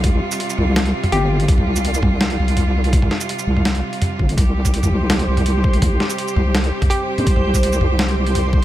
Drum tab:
HH |x---x---xx-xx--x|x---x---xx-xx--x|x---x---xx-xx--x|x---x---xx-xx--x|
SH |---x-x----------|---x-x----------|---x-x----------|---x-x----------|
SD |--------o-------|--------o-------|--o-----o-------|--------o-------|
T2 |o-----o----o----|-o----o-----o---|-o-----o----o---|o----o-----o----|
BD |o---------------|o-----o---------|o-------------o-|o--o----------o-|

HH |x---x---xx-xx--x|x---x---xx-xx---|
SH |---x-x----------|---x-x----------|
SD |--o-----o-------|--------o-------|
T2 |o-----o----o----|-o----o-----o---|
BD |o----------o----|o--o----------o-|